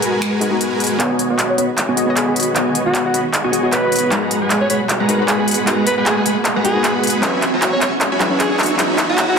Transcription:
Already playing: string section B2 G#3 B3 F#4, synth pluck G#3 B3 D#4 F#4 A#5, supersaw synth G#3 F#4 A#4 B4 G#5
0.02 closed hi-hat
0.22 finger snap, closed hi-hat
0.40 synth pluck G#3 D#4 F#4 A#4 B4, closed hi-hat
0.50 synth pluck G#3 B3 D#4 F#4 A#5
0.61 closed hi-hat
0.80 closed hi-hat
0.84 closed hi-hat
0.87 closed hi-hat
0.98 808-style bass B1, string section D#3 G#3 B3 F#4, synth pluck B3 F#4 G#4 C#5 D#5, supersaw synth B3 F#4 C#5 D#5 G#5, clap, closed hi-hat, riser
1.19 closed hi-hat
1.30 808-style bass B1, supersaw synth B3 F#4 C#5 D#5 F#5
1.39 clap, closed hi-hat
1.50 alto saxophone C#5
1.58 808-style bass B1, supersaw synth B3 F#4 C#5 D#5 B5, alto saxophone C#5, closed hi-hat
1.78 clap, closed hi-hat
1.88 808-style bass B1, supersaw synth B3 F#4 C#5 D#5 G#5
1.96 synth pluck B3 F#4 G#4 C#5 D#5, closed hi-hat
2.06 synth pluck B3 F#4 G#4 C#5
2.10 synth pluck D#5
2.16 808-style bass B1, supersaw synth B3 F#4 C#5 D#5 B5, alto saxophone G#4, clap, closed hi-hat
2.27 alto saxophone G#4
2.36 closed hi-hat
2.40 closed hi-hat
2.43 closed hi-hat
2.53 808-style bass B1, synth pluck B3 F#4 G#4 C#5, supersaw synth B3 F#4 C#5 D#5 G#5, clap, closed hi-hat
2.57 synth pluck D#5
2.75 closed hi-hat
2.86 808-style bass B1, supersaw synth B3 F#4 C#5 D#5 F#5, alto saxophone F#4
2.95 clap, closed hi-hat
3.05 alto saxophone F#4
3.14 808-style bass B1, supersaw synth B3 F#4 C#5 D#5 B5, closed hi-hat
3.34 clap, closed hi-hat
3.44 808-style bass B1, supersaw synth B3 F#4 C#5 D#5 G#5
3.52 synth pluck B3 F#4 G#4 C#5 D#5, closed hi-hat
3.62 synth pluck B3 F#4 G#4 C#5 D#5
3.72 808-style bass B1, supersaw synth B3 F#4 C#5 D#5 B5, alto saxophone B4, clap, closed hi-hat
3.92 closed hi-hat
3.96 closed hi-hat
3.99 closed hi-hat
4.10 808-style bass G#1, string section B2 B3, synth pluck G#3 D#4 F#4 A#4, supersaw synth G#3 G#4 B4 F#5 A#5, clap, closed hi-hat
4.14 synth pluck B4
4.31 closed hi-hat
4.42 808-style bass G#1, supersaw synth G#3 G#4 B4 F#5 G#5
4.50 clap, closed hi-hat
4.61 alto saxophone C#5
4.70 808-style bass G#1, supersaw synth G#3 G#4 B4 F#5 B5, alto saxophone C#5, closed hi-hat
4.89 clap, closed hi-hat
5.00 808-style bass G#1, supersaw synth G#3 G#4 B4 F#5 A#5
5.08 synth pluck G#3 D#4 F#4 A#4 B4, closed hi-hat
5.18 synth pluck G#3 D#4 F#4 B4
5.28 808-style bass G#1, supersaw synth G#3 G#4 B4 F#5 B5, alto saxophone G#4, clap, closed hi-hat
5.39 alto saxophone G#4
5.48 closed hi-hat
5.51 closed hi-hat
5.54 closed hi-hat
5.65 808-style bass G#1, synth pluck G#3 D#4 F#4 A#4 B4, supersaw synth G#3 G#4 B4 F#5 A#5, clap, closed hi-hat
5.87 alto saxophone B4, closed hi-hat
5.97 808-style bass G#1, supersaw synth G#3 G#4 B4 F#5 G#5, alto saxophone B4
6.06 alto saxophone G#4, clap, closed hi-hat
6.17 alto saxophone G#4
6.26 808-style bass G#1, supersaw synth G#3 G#4 B4 F#5 B5, closed hi-hat
6.45 clap, closed hi-hat
6.56 808-style bass G#1, supersaw synth G#3 G#4 B4 F#5 A#5
6.64 synth pluck G#3 D#4 F#4 A#4 B4, alto saxophone G#4, closed hi-hat
6.73 synth pluck G#3 D#4 F#4 B4
6.84 supersaw synth G#3 G#4 B4 F#5 B5, clap, closed hi-hat
7.04 closed hi-hat
7.07 closed hi-hat
7.10 closed hi-hat
7.21 string section E3 G#3, synth pluck F#3 C#4 E4 G#4 B4, supersaw synth F#4 C#5 E5 G#5 B5, clap, closed hi-hat
7.42 clap, closed hi-hat
7.53 808-style bass F#1, supersaw synth F#4 C#5 E5 G#5 A#5
7.62 clap, closed hi-hat
7.73 alto saxophone C#5
7.81 supersaw synth F#4 C#5 E5 G#5 C#6, alto saxophone C#5, clap, closed hi-hat
8.01 clap, closed hi-hat
8.12 supersaw synth F#4 C#5 E5 G#5 B5
8.20 synth pluck F#3 C#4 E4 G#4 B4, clap, closed hi-hat
8.29 synth pluck F#3 C#4 E4 G#4 B4
8.40 supersaw synth F#4 C#5 E5 G#5 C#6, alto saxophone G#4, clap, closed hi-hat
8.51 alto saxophone G#4
8.59 clap, closed hi-hat
8.63 closed hi-hat
8.66 closed hi-hat
8.77 synth pluck F#3 C#4 E4 G#4, supersaw synth F#4 C#5 E5 G#5 B5, clap, closed hi-hat
8.81 synth pluck B4
8.98 clap, closed hi-hat
9.09 supersaw synth F#4 C#5 E5 G#5 A#5, alto saxophone F#4
9.18 clap, closed hi-hat
9.29 alto saxophone F#4

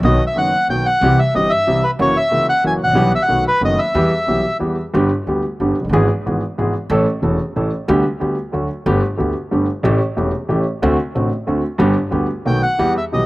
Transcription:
0.03 upright bass B1, grand piano B1 B2 D#3 F#3 B3 F#4, bandoneon D#5
0.27 bandoneon E5
0.36 upright bass F#1, grand piano F#1 F#2 D#3 F#3 B3 F#4, bandoneon F#5
0.68 upright bass B1, grand piano B1 B2 D#3 F#3 B3 F#4, bandoneon G5
0.86 bandoneon F#5
1.01 upright bass C2, grand piano C2 C3 E3 G3 C4 G4
1.19 bandoneon E5
1.34 upright bass G1, grand piano G1 G2 E3 G3 C4 G4, bandoneon D#5
1.50 bandoneon E5
1.67 upright bass C2, grand piano C2 C3 E3 G3 C4 G4
1.84 bandoneon B4
1.99 upright bass F#1, grand piano F#2 E3 F#3 A#3 C#4 F#4, bandoneon C#5
2.17 bandoneon E5
2.31 grand piano C#2 C#3 E3 A#3 C#4 F#4, upright bass C#2
2.49 bandoneon F#5
2.64 upright bass F#1, grand piano F#2 E3 F#3 A#3 C#4 F#4, bandoneon G#5
2.84 grand piano G#1 A1, upright bass G#1, bandoneon F#5
2.90 upright bass A1 A#1, grand piano A#1
2.95 grand piano B1 B2 E3 G3 B3 G4, upright bass B1
3.15 bandoneon E5
3.22 bandoneon F#5
3.28 grand piano B1 B2 D#3 A3 B3 F#4, upright bass B1
3.48 bandoneon B4
3.61 grand piano F#1 F#2 D#3 A3 B3 F#4, upright bass F#1, bandoneon D#5
3.79 bandoneon E5
3.95 upright bass E2, grand piano E2 E3 G3 B3 G4
4.27 upright bass B1, grand piano B1 B2 E3 G3 B3 G4
4.59 grand piano E2 E3 G3 B3 G4, upright bass E2
4.94 grand piano G1 G2 D3 G3 B3 G4, upright bass G1
5.27 upright bass D2, grand piano D2 D3 G3 B3 G4
5.60 upright bass G1, grand piano G1 G2 D3 G3 B3 G4
5.80 upright bass F1, grand piano F1
5.84 upright bass F#1, grand piano F#1
5.89 upright bass G1 G#1, grand piano G1 G#1 G#2 E3 B3
5.93 grand piano G#3 G#4
6.26 grand piano G#1 G#2 E3 G#3 B3 G#4, upright bass G#1
6.58 grand piano G#1 G#2 E3 G#3 B3 G#4, upright bass G#1
6.90 upright bass A1, grand piano A1 A2 E3 A3 C#4 A4
7.22 grand piano E1 E2 E3 A3 C#4 A4, upright bass E1
7.56 upright bass A1, grand piano A1 A2 E3 A3 C#4 A4
7.88 upright bass D2, grand piano D2 D3 G3 B3 G4
8.20 grand piano D2 D3 G3 B3 G4, upright bass D2
8.52 grand piano D2 D3 F#3 A3 F#4, upright bass D2
8.86 upright bass G1, grand piano G1 G2 D3 A3 B3 G4
9.17 grand piano D2 D3 A3 B3 G4, upright bass D2
9.51 grand piano G1 G2 D3 A3 B3 G4, upright bass G1
9.83 grand piano A1 A2 E3 A3 C#4 G4, upright bass A1
10.17 grand piano E1 E2 E3 A3 C#4 G4, upright bass E1
10.49 grand piano A1 A2 E3 A3 C#4 G4, upright bass A1
10.82 grand piano D2 D3 A3 C4 F#4, upright bass D2
11.15 upright bass A1, grand piano A1 A2 D3 A3 C4 F#4
11.47 grand piano D2 D3 A3 C4 F#4, upright bass D2
11.78 grand piano G1 G2 D3 G3 B3 G4, upright bass G1
12.11 grand piano D2 D3 G3 B3 G4, upright bass D2
12.45 upright bass B1, grand piano B1 B2 D#3 A3 B3 F#4, bandoneon G5
12.63 bandoneon F#5
12.79 grand piano E2 E3 G3 B3 G4, upright bass E2
12.98 bandoneon E5
13.12 grand piano B1 B2 E3 G3 B3 G4, upright bass B1, bandoneon D#5

